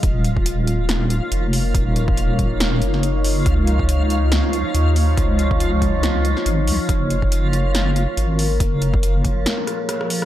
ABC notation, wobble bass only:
X:1
M:4/4
L:1/16
Q:"Swing 16ths" 1/4=140
K:Db
V:1 name="Wobble bass" clef=bass
E,,,8- E,,,2 z2 F,,,4 | E,,,8- E,,,2 G,,,6 | D,,8- D,,2 z2 E,,4 | D,,8- D,,2 z2 A,,,2 D,, z |
G,,,8- G,,,2 z2 A,,,4 | G,,,8 z8 |]